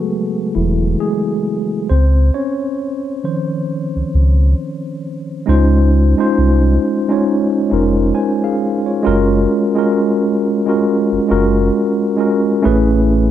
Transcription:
Already playing: C#3 F#3 G#3 A3 B3 F#4 G#4 A4 B4
0.55 E1 E3 E4
1.00 G#3 G#4
1.89 C#2 C4 C5
2.34 C#4 C#5
3.24 D#3 F3 C5
3.96 C#2
4.14 C#2
5.46 C#2 G#3 C#4 D#4 F4 C5
6.17 G#3 C#4 D#4 F4 C5
6.38 C2
7.08 G#3 C#4 D#4 F4 C#5
7.70 F1 G#3 C#4 D#4 F4 A#4
8.15 C5 G#5
8.44 G#4 F5
8.86 F4 C#5
9.03 F#1 G#3 C#4 F4 F#4 A#4
9.75 G#3 C#4 F4 F#4 A#4
10.66 G#3 C#4 F4 F#4 A#4
11.12 F#1
11.28 F#1 G#3 C#4 F4 F#4 A#4
12.17 G#3 C#4 F4 F#4 A#4
12.62 A1 A3 C#4 E4 G#4 B4

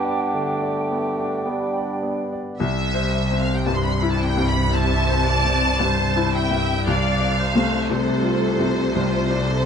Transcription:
Already playing: G2 B3 D4 G4 D5 G5
0.04 D5
0.33 D3 A3
0.62 D5
0.90 B3
1.19 D4
1.46 G3 B3
1.76 D5
2.02 B3
2.32 D5
2.60 C2 C3 E5
2.94 C5
3.31 C4
3.39 F5
3.55 G5
3.65 G2 A5
3.74 C6
3.82 B5
3.90 C6
4.00 E4 B5
4.10 A5
4.19 G5
4.38 G2
4.47 B5
4.73 C4 E5 A5
5.10 C5
5.28 D5
5.44 C4
5.80 G2 C5
6.16 E4
6.34 E5 G5
6.51 G2
6.85 C2 C3 D5 F5
7.21 D5
7.40 C5
7.56 A3
7.90 C3 A4 C5
8.23 F4
8.59 C3
8.95 C2 F4
9.30 D5
9.46 A4

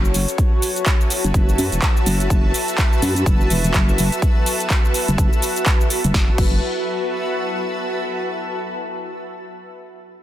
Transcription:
Already playing: F#1 F#4 B4 C#5 E5 A5
0.05 cabasa
0.14 open hi-hat, cabasa
0.28 closed hi-hat, cabasa
0.38 kick, closed hi-hat, cabasa
0.62 open hi-hat, cabasa
0.76 closed hi-hat, cabasa
0.86 kick, clap, closed hi-hat, cabasa
1.01 cabasa
1.10 open hi-hat, cabasa
1.24 F#1, closed hi-hat, cabasa
1.34 F#1, kick, closed hi-hat, cabasa
1.49 cabasa
1.58 F#2, open hi-hat, cabasa
1.72 E1, closed hi-hat, cabasa
1.82 kick, clap, closed hi-hat, cabasa
1.97 cabasa
2.06 F#1, open hi-hat, cabasa
2.20 closed hi-hat, cabasa
2.30 F#1 B4, kick, closed hi-hat, cabasa
2.54 open hi-hat, cabasa
2.68 closed hi-hat, cabasa
2.78 kick, clap, closed hi-hat, cabasa
2.93 cabasa
3.02 F#2, open hi-hat, cabasa
3.16 closed hi-hat, cabasa
3.26 F#1, kick, closed hi-hat, cabasa
3.41 cabasa
3.50 E1, open hi-hat, cabasa
3.64 closed hi-hat, cabasa
3.74 F#1, kick, clap, closed hi-hat, cabasa
3.89 cabasa
3.98 open hi-hat, cabasa
4.12 closed hi-hat, cabasa
4.22 kick, closed hi-hat, cabasa
4.46 open hi-hat, cabasa
4.60 closed hi-hat, cabasa
4.70 kick, clap, closed hi-hat, cabasa
4.85 cabasa
4.94 open hi-hat, cabasa
5.08 F#1, closed hi-hat, cabasa
5.18 F#1, kick, closed hi-hat, cabasa
5.33 cabasa
5.42 open hi-hat, cabasa
5.56 closed hi-hat, cabasa
5.66 kick, clap, closed hi-hat, cabasa
5.81 cabasa
5.90 open hi-hat, cabasa
6.04 F#1, closed hi-hat, cabasa
6.14 F#1 F#4 C#5 A5, kick, snare
6.23 B4
6.30 E5
6.36 F#1 A5, kick, crash

